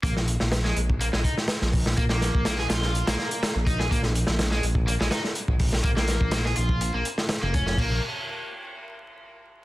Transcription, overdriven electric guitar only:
X:1
M:4/4
L:1/16
Q:1/4=124
K:Bbm
V:1 name="Overdriven electric guitar"
B, z4 A, z2 B, A, E z4 z | B, B,3 B, A F3 B,4 z E A | B, z4 A, z2 B, A, E z4 z | B, B,3 B, A F3 B, z3 B, D D |
B,2 z12 z2 |]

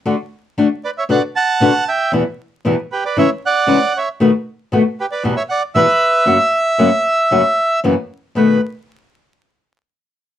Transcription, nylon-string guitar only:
X:1
M:4/4
L:1/8
Q:1/4=116
K:Bm
V:1 name="Nylon-string guitar" clef=bass
[D,A,DF] z [D,A,DF] z [B,,D,B,DF] z [B,,D,B,DF] z | [E,,B,,E,G,B,E] z [E,,B,,E,G,B,E] z [C,E,^G,CE] z [C,E,G,CE] z | [B,,^D,A,B,F] z [B,,D,A,B,F] z [E,,B,,E,G,B,E] z [E,,B,,E,G,B,E] z | [F,,C,F,^A,CF] z [F,,C,F,A,CF] z [F,,C,F,A,CF] z [F,,C,E,A,CF] z |
[B,,^D,A,B,F] z6 z |]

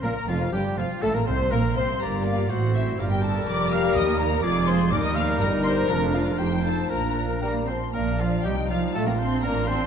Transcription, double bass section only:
X:1
M:2/4
L:1/16
Q:1/4=122
K:Bb
V:1 name="Double bass section" clef=bass
B,,,2 F,,,2 G,,,2 F,,,2 | A,,, z C,,2 B,,,2 C,,2 | G,,,4 A,,,4 | G,,,4 F,,,4 |
E,,4 F,,,4 | E,,4 G,,,4 | F,,,4 F,,,4 | B,,,6 z2 |
B,,,4 C,,4 | B,,,4 A,,,4 |]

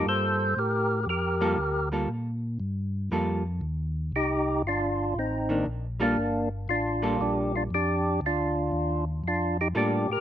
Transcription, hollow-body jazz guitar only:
X:1
M:4/4
L:1/8
Q:"Swing" 1/4=118
K:Gm
V:1 name="Hollow-body jazz guitar"
[G,B,FA]2 z3 [G,B,FA] z [G,B,FA] | z4 [G,B,FA] z3 | z4 z [E,B,D] z [G,B,FA] | z3 [G,B,FA]3 z2 |
z6 [G,B,FA] z |]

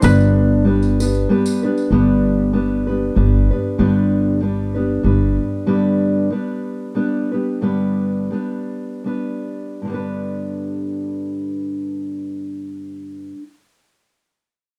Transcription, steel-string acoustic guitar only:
X:1
M:3/4
L:1/8
Q:"Swing" 1/4=93
K:G
V:1 name="Steel-string acoustic guitar"
[G,,D,G,B,DB]2 [G,B,DB] [G,B,DB] [G,B,DB] [G,B,DB] | [G,,D,G,B,DB]2 [G,B,DB] [G,B,DB] [G,B,DB] [G,B,DB] | [G,,D,G,B,DB]2 [G,B,DB] [G,B,DB] [G,B,DB]2 | [G,,D,G,B,DB]2 [G,B,DB]2 [G,B,DB] [G,B,DB] |
[G,,D,G,B,DB]2 [G,B,DB]2 [G,B,DB]2 | [G,,D,G,B,DB]6- | [G,,D,G,B,DB]6 |]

